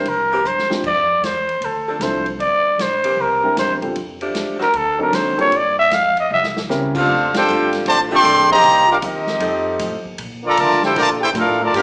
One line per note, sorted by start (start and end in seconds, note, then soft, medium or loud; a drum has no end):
0.05 0.44 C2 medium
0.05 0.48 A#4 medium
0.05 ride medium
0.32 0.41 E3 medium
0.32 0.41 A#3 medium
0.32 0.41 C4 medium
0.32 0.41 G4 loud
0.45 0.68 G2 medium
0.45 0.71 C5 medium
0.45 hi-hat pedal medium
0.58 snare medium
0.70 0.82 G3 medium
0.70 0.83 C4 medium
0.70 0.83 D4 medium
0.70 0.83 F4 medium
0.70 0.83 C5 medium
0.70 muted upright bass stroke soft
0.70 snare medium
0.84 1.21 F2 medium
0.84 1.27 D5 loud
0.84 kick medium
0.84 crash medium
1.22 1.60 E2 medium
1.22 snare medium
1.22 hi-hat pedal medium
1.22 ride medium
1.26 1.66 C5 medium
1.49 ride soft
1.61 1.99 D2 medium
1.61 2.04 A4 medium
1.61 ride medium
1.87 1.97 F3 medium
1.87 1.97 C4 medium
1.87 1.98 D4 medium
1.87 1.97 A4 medium
1.99 2.38 C2 medium
1.99 2.24 F3 medium
1.99 2.24 C4 medium
1.99 2.24 D4 medium
1.99 2.24 E4 medium
1.99 2.25 A4 medium
1.99 2.27 C5 medium
1.99 snare medium
1.99 hi-hat pedal medium
1.99 ride medium
2.26 ride soft
2.39 2.77 G1 medium
2.39 2.83 D5 loud
2.39 ride medium
2.78 3.16 A#1 medium
2.78 3.23 C5 medium
2.78 snare medium
2.78 hi-hat pedal medium
2.78 ride medium
3.04 3.54 E3 medium
3.04 3.54 A#3 medium
3.04 3.54 C4 medium
3.04 3.54 G4 medium
3.04 ride medium
3.17 3.55 C2 medium
3.21 3.58 A#4 medium
3.44 3.80 G3 medium
3.44 3.80 C4 soft
3.44 3.80 D4 soft
3.44 3.80 E4 medium
3.44 3.80 A#4 medium
3.56 3.70 G2 medium
3.56 3.74 C5 medium
3.56 snare medium
3.56 hi-hat pedal medium
3.56 ride medium
3.70 3.82 E2 medium
3.82 3.95 C2 medium
3.82 3.95 G3 medium
3.82 3.95 C4 medium
3.82 3.95 D4 soft
3.82 3.95 F4 medium
3.82 3.95 A4 medium
3.82 ride soft
3.96 4.33 F2 medium
3.96 ride medium
4.21 4.58 F3 medium
4.21 4.58 A3 medium
4.21 4.58 D4 medium
4.21 4.58 G4 medium
4.21 ride soft
4.34 4.73 E2 medium
4.34 snare medium
4.34 hi-hat pedal medium
4.34 ride medium
4.59 4.69 D#3 medium
4.59 4.69 C4 medium
4.59 4.69 D4 medium
4.59 4.69 F#4 loud
4.59 4.78 A#4 loud
4.59 snare soft
4.73 5.12 D2 medium
4.73 5.01 A4 medium
4.73 ride medium
4.99 5.36 F#3 medium
4.99 5.36 C4 medium
4.99 5.36 D4 medium
4.99 5.36 D#4 medium
4.99 5.36 A4 medium
4.99 5.17 A#4 medium
5.12 5.36 D#2 medium
5.12 5.39 C5 medium
5.12 snare medium
5.12 hi-hat pedal medium
5.12 ride medium
5.38 5.51 G3 medium
5.38 5.51 A#3 medium
5.38 5.51 D4 medium
5.38 5.51 F4 medium
5.38 5.51 A4 medium
5.38 5.58 C#5 medium
5.38 muted upright bass stroke soft
5.38 ride soft
5.51 5.90 G2 medium
5.51 ride medium
5.56 5.78 D5 medium
5.79 5.95 E5 loud
5.91 6.29 F2 medium
5.91 6.18 F5 loud
5.91 snare medium
5.91 hi-hat pedal medium
5.91 ride medium
6.17 6.31 D#5 medium
6.17 ride soft
6.30 6.68 C2 medium
6.30 6.47 E5 medium
6.43 snare medium
6.57 snare medium
6.69 7.07 C#2 medium
6.69 6.92 G3 medium
6.69 6.92 C4 medium
6.69 6.92 C#4 medium
6.69 6.92 E4 medium
6.69 6.92 A#4 medium
6.69 snare medium
6.69 hi-hat pedal medium
6.95 7.45 D3 loud
6.95 7.45 G3 medium
6.95 7.45 A3 medium
6.95 7.31 C4 medium
6.95 7.31 D4 medium
6.95 7.32 D4 medium
6.95 7.31 F4 medium
6.95 7.45 F4 loud
6.95 7.32 A4 medium
6.95 7.32 C5 medium
6.95 7.32 F5 loud
6.95 kick medium
6.95 crash medium
7.08 7.31 F1 medium
7.33 7.70 C4 medium
7.33 7.70 D4 medium
7.33 7.70 G4 medium
7.33 7.71 A4 medium
7.33 7.71 G5 loud
7.33 muted upright bass stroke soft
7.33 snare medium
7.33 ride medium
7.37 7.71 D4 medium
7.37 7.72 C5 medium
7.47 7.84 G1 medium
7.47 8.06 D3 loud
7.47 8.06 G3 loud
7.47 8.06 A3 loud
7.47 8.07 F4 loud
7.47 hi-hat pedal medium
7.73 snare soft
7.73 ride medium
7.85 8.23 A1 medium
7.85 7.98 C3 medium
7.85 7.98 D3 loud
7.85 7.99 A3 medium
7.85 7.99 G4 medium
7.85 7.99 C5 loud
7.85 7.99 D5 medium
7.85 7.99 A5 loud
7.85 ride medium
8.11 8.47 D3 loud
8.11 8.20 D3 loud
8.11 8.20 G3 medium
8.11 8.20 A3 medium
8.11 8.47 A3 loud
8.11 8.47 C4 medium
8.11 8.20 F4 loud
8.11 8.48 A4 loud
8.11 8.48 D5 loud
8.11 8.48 G5 loud
8.11 8.48 C6 loud
8.24 8.62 A#1 loud
8.24 hi-hat pedal medium
8.24 ride medium
8.49 8.86 D#3 loud
8.49 8.86 G3 loud
8.49 8.85 A#3 loud
8.49 8.87 G4 loud
8.49 8.87 C5 loud
8.49 8.87 D#5 loud
8.49 8.87 A#5 loud
8.63 9.01 C2 medium
8.63 ride medium
8.87 8.94 F4 medium
8.87 8.97 F5 loud
8.91 8.97 D4 medium
8.91 8.97 G4 medium
8.91 8.97 A#4 medium
9.02 9.39 D#2 medium
9.02 10.01 G3 medium
9.02 9.38 A#3 medium
9.02 10.02 C4 medium
9.02 10.01 D#4 medium
9.02 10.02 G4 medium
9.02 9.39 A#4 medium
9.02 10.02 D#5 medium
9.02 hi-hat pedal medium
9.02 ride medium
9.27 snare medium
9.40 9.78 F2 loud
9.40 10.00 F3 medium
9.40 9.99 C4 medium
9.40 10.00 D#4 medium
9.40 10.00 A4 loud
9.40 ride medium
9.79 9.94 A2 medium
9.79 hi-hat pedal medium
9.79 ride medium
9.92 10.04 F2 medium
10.05 10.17 D#2 medium
10.18 10.56 A#2 medium
10.18 ride medium
10.43 10.56 D3 medium
10.43 10.56 F3 medium
10.43 10.56 A#3 medium
10.43 10.58 F4 loud
10.47 10.58 A4 loud
10.47 10.58 D5 loud
10.47 10.58 A#5 loud
10.57 10.82 D3 medium
10.57 10.95 D3 medium
10.57 10.82 F3 medium
10.57 10.82 A3 medium
10.57 10.83 F4 loud
10.57 10.83 A#4 loud
10.57 10.83 D5 medium
10.57 10.83 A5 loud
10.57 hi-hat pedal medium
10.57 ride loud
10.70 snare soft
10.83 10.97 E4 medium
10.83 10.95 G4 medium
10.83 10.96 A4 medium
10.83 10.96 C5 medium
10.83 10.96 G5 loud
10.83 snare medium
10.96 11.33 A#2 medium
10.96 11.07 D3 medium
10.96 11.55 F3 medium
10.96 11.07 F3 loud
10.96 11.07 A3 medium
10.96 11.55 A#3 medium
10.96 11.55 D4 medium
10.96 11.10 F4 loud
10.96 11.55 A4 loud
10.96 11.09 A#4 loud
10.96 11.09 D5 loud
10.96 11.09 A5 loud
10.96 ride medium
11.21 11.30 E4 medium
11.21 11.27 G4 medium
11.21 11.29 A4 medium
11.21 11.29 C5 medium
11.21 11.29 G5 loud
11.33 11.72 A2 loud
11.33 11.58 A3 medium
11.33 11.58 D4 medium
11.33 11.58 F4 medium
11.33 hi-hat pedal medium
11.33 ride medium
11.38 11.60 D4 medium
11.38 11.59 A4 medium
11.38 11.60 A#4 medium
11.38 11.60 F5 loud
11.61 11.74 D3 medium
11.61 11.74 F3 medium
11.61 11.74 A3 medium
11.61 11.75 F4 medium
11.61 11.75 A#4 medium
11.61 11.75 D5 medium
11.61 11.75 A5 loud
11.73 11.82 G2 medium
11.73 11.82 F3 loud
11.73 11.82 A#3 medium
11.73 11.82 D4 medium
11.73 11.82 F4 medium
11.73 11.82 G4 loud
11.73 11.82 G4 medium
11.73 11.82 A#4 medium
11.73 11.82 F5 loud
11.73 snare soft
11.73 ride medium